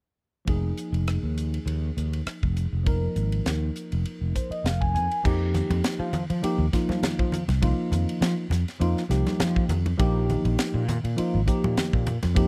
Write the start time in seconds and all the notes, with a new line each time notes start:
0.45 F1 F3 A#3 D#4, kick, ride
0.49 G#4
0.77 hi-hat pedal, ride
0.92 F1, ride
1.07 cross-stick, ride
1.23 D#2
1.38 hi-hat pedal, ride
1.54 ride
1.66 D#2, ride
1.97 D#2, hi-hat pedal, ride
2.13 ride
2.26 muted fretless electric bass stroke, cross-stick, ride
2.43 F1, kick
2.57 hi-hat pedal, ride
2.73 F1
2.83 F3 A#3 D#4 A#4, kick, ride
3.16 G#1, hi-hat pedal, ride
3.32 ride
3.46 D#2, snare, ride
3.76 hi-hat pedal, ride
3.92 F1, ride
4.05 ride
4.21 F1
4.35 C5, kick, hi-hat pedal, ride
4.50 D#5, muted fretless electric bass stroke, ride
4.64 F1 F5, snare, ride
4.81 G#5, kick
4.94 F2 G#5, hi-hat pedal, ride
5.11 ride
5.24 F2 F3 A#3 D#4 G4, kick, crash
5.54 hi-hat pedal, ride, low conga
5.70 F2, ride, high conga
5.84 snare, ride
5.99 F3
6.13 hi-hat pedal, ride, low conga
6.30 F3, ride
6.42 F3 A#3 D#4 G4, muted fretless electric bass stroke, ride
6.58 D#2
6.73 F3 A#3 D#4 F4, kick, snare, hi-hat pedal, ride
6.89 F3, snare, high conga
7.03 snare, ride, low conga
7.19 F3, kick
7.32 hi-hat pedal, ride, low conga
7.48 C2, snare, ride, high conga
7.62 F3 A#3 D#4 F4, kick, ride
7.91 F2, hi-hat pedal, ride, low conga
8.09 ride
8.21 F3, snare, ride
8.50 F2, snare, hi-hat pedal, ride, low conga
8.68 snare, ride
8.80 F2 F3 A#3 D#4 F4, ride
8.97 snare
9.09 C2 F3 A#3 D#4 G4, snare, hi-hat pedal, ride
9.27 snare, ride, high conga
9.40 F3, snare, ride, low conga
9.56 kick
9.69 F2, hi-hat pedal, ride, low conga
9.86 ride, high conga
9.98 A#1 F3 A#3 D#4 G4, kick, ride
10.30 hi-hat pedal, ride, low conga
10.45 A#1, ride
10.59 snare, ride
10.74 A#2
10.88 hi-hat pedal, ride, low conga
11.04 A#2, ride
11.16 F3 A#3 D#4 F4, muted fretless electric bass stroke, ride
11.34 G#1
11.46 F3 A#3 D#4 G4, muted fretless electric bass stroke, kick, hi-hat pedal, ride
11.64 A#2, high conga
11.77 snare, ride, low conga
11.93 A#2, kick
12.06 hi-hat pedal, ride, low conga
12.23 F2, snare, ride, high conga
12.35 F3 A#3 D#4 G4, kick, ride